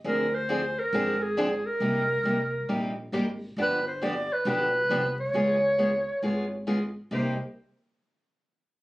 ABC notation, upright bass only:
X:1
M:4/4
L:1/8
Q:"Swing" 1/4=136
K:Cm
V:1 name="Upright bass" clef=bass
D,,4 A,,,4 | C,,2 C,,2 B,,,2 A,,,2 | G,,,4 =B,,,2 C,,2 | _D,,4 A,,,4 |
C,, z6 z |]